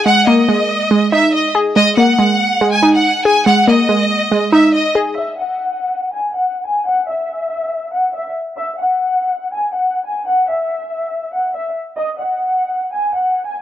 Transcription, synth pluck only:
0, 0, Header, 1, 2, 480
1, 0, Start_track
1, 0, Tempo, 425532
1, 67, Time_signature, 4, 2, 24, 8
1, 15362, End_track
2, 0, Start_track
2, 0, Title_t, "Synth pluck"
2, 0, Program_c, 0, 84
2, 0, Note_on_c, 0, 63, 84
2, 0, Note_on_c, 0, 68, 94
2, 65, Note_on_c, 0, 56, 92
2, 307, Note_on_c, 0, 58, 94
2, 535, Note_off_c, 0, 56, 0
2, 546, Note_off_c, 0, 63, 0
2, 548, Note_on_c, 0, 56, 84
2, 1012, Note_off_c, 0, 56, 0
2, 1026, Note_off_c, 0, 68, 0
2, 1026, Note_on_c, 0, 56, 93
2, 1268, Note_on_c, 0, 63, 82
2, 1507, Note_off_c, 0, 58, 0
2, 1747, Note_on_c, 0, 68, 89
2, 1973, Note_off_c, 0, 56, 0
2, 1987, Note_on_c, 0, 56, 95
2, 2226, Note_on_c, 0, 58, 84
2, 2452, Note_off_c, 0, 56, 0
2, 2466, Note_on_c, 0, 56, 86
2, 2467, Note_off_c, 0, 63, 0
2, 2933, Note_off_c, 0, 56, 0
2, 2946, Note_on_c, 0, 56, 96
2, 2947, Note_off_c, 0, 68, 0
2, 3187, Note_on_c, 0, 63, 83
2, 3426, Note_off_c, 0, 58, 0
2, 3669, Note_on_c, 0, 68, 92
2, 3893, Note_off_c, 0, 56, 0
2, 3906, Note_on_c, 0, 56, 96
2, 4146, Note_on_c, 0, 58, 86
2, 4373, Note_off_c, 0, 56, 0
2, 4387, Note_off_c, 0, 63, 0
2, 4387, Note_on_c, 0, 56, 89
2, 4854, Note_off_c, 0, 56, 0
2, 4867, Note_off_c, 0, 68, 0
2, 4868, Note_on_c, 0, 56, 93
2, 5104, Note_on_c, 0, 63, 95
2, 5346, Note_off_c, 0, 58, 0
2, 5586, Note_on_c, 0, 68, 91
2, 5825, Note_off_c, 0, 63, 0
2, 5826, Note_off_c, 0, 68, 0
2, 5827, Note_off_c, 0, 56, 0
2, 15362, End_track
0, 0, End_of_file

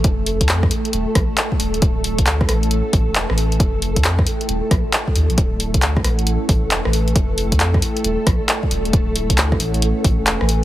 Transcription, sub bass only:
0, 0, Header, 1, 2, 480
1, 0, Start_track
1, 0, Tempo, 444444
1, 46, Time_signature, 4, 2, 24, 8
1, 11492, End_track
2, 0, Start_track
2, 0, Title_t, "Sub bass"
2, 0, Program_c, 0, 38
2, 46, Note_on_c, 0, 29, 93
2, 440, Note_on_c, 0, 41, 77
2, 456, Note_off_c, 0, 29, 0
2, 745, Note_off_c, 0, 41, 0
2, 1005, Note_on_c, 0, 27, 95
2, 1136, Note_off_c, 0, 27, 0
2, 1245, Note_on_c, 0, 34, 86
2, 1376, Note_off_c, 0, 34, 0
2, 1726, Note_on_c, 0, 27, 98
2, 1940, Note_off_c, 0, 27, 0
2, 1966, Note_on_c, 0, 26, 93
2, 2360, Note_on_c, 0, 38, 80
2, 2376, Note_off_c, 0, 26, 0
2, 2683, Note_on_c, 0, 33, 84
2, 2700, Note_off_c, 0, 38, 0
2, 3041, Note_off_c, 0, 33, 0
2, 3165, Note_on_c, 0, 33, 88
2, 3296, Note_off_c, 0, 33, 0
2, 3319, Note_on_c, 0, 28, 101
2, 3512, Note_off_c, 0, 28, 0
2, 3560, Note_on_c, 0, 33, 96
2, 3865, Note_off_c, 0, 33, 0
2, 3887, Note_on_c, 0, 29, 100
2, 4281, Note_on_c, 0, 41, 81
2, 4297, Note_off_c, 0, 29, 0
2, 4585, Note_off_c, 0, 41, 0
2, 4846, Note_on_c, 0, 27, 90
2, 4977, Note_off_c, 0, 27, 0
2, 5086, Note_on_c, 0, 34, 88
2, 5217, Note_off_c, 0, 34, 0
2, 5566, Note_on_c, 0, 39, 87
2, 5696, Note_off_c, 0, 39, 0
2, 5719, Note_on_c, 0, 34, 87
2, 5792, Note_off_c, 0, 34, 0
2, 5807, Note_on_c, 0, 26, 93
2, 6201, Note_on_c, 0, 38, 79
2, 6218, Note_off_c, 0, 26, 0
2, 6528, Note_on_c, 0, 33, 79
2, 6544, Note_off_c, 0, 38, 0
2, 6883, Note_off_c, 0, 33, 0
2, 7007, Note_on_c, 0, 33, 86
2, 7137, Note_off_c, 0, 33, 0
2, 7161, Note_on_c, 0, 28, 98
2, 7353, Note_off_c, 0, 28, 0
2, 7402, Note_on_c, 0, 33, 94
2, 7706, Note_off_c, 0, 33, 0
2, 7728, Note_on_c, 0, 29, 96
2, 8122, Note_on_c, 0, 41, 79
2, 8138, Note_off_c, 0, 29, 0
2, 8426, Note_off_c, 0, 41, 0
2, 8687, Note_on_c, 0, 27, 88
2, 8817, Note_off_c, 0, 27, 0
2, 8926, Note_on_c, 0, 34, 90
2, 9057, Note_off_c, 0, 34, 0
2, 9406, Note_on_c, 0, 27, 99
2, 9620, Note_off_c, 0, 27, 0
2, 9647, Note_on_c, 0, 26, 100
2, 10041, Note_on_c, 0, 38, 80
2, 10057, Note_off_c, 0, 26, 0
2, 10345, Note_off_c, 0, 38, 0
2, 10366, Note_on_c, 0, 33, 82
2, 10722, Note_off_c, 0, 33, 0
2, 10847, Note_on_c, 0, 33, 91
2, 10977, Note_off_c, 0, 33, 0
2, 11002, Note_on_c, 0, 28, 104
2, 11194, Note_off_c, 0, 28, 0
2, 11241, Note_on_c, 0, 33, 96
2, 11492, Note_off_c, 0, 33, 0
2, 11492, End_track
0, 0, End_of_file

